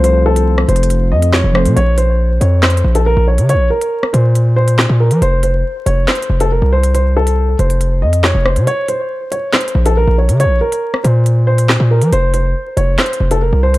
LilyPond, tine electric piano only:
\new Staff \with { instrumentName = "Tine electric piano" } { \time 4/4 \key bes \minor \tempo 4 = 139 <f a c' a' c''>2.~ <f a c' a' c''>8 <f a c' a' c''>8 | r1 | r1 | r1 |
r1 | r1 | r1 | r1 | }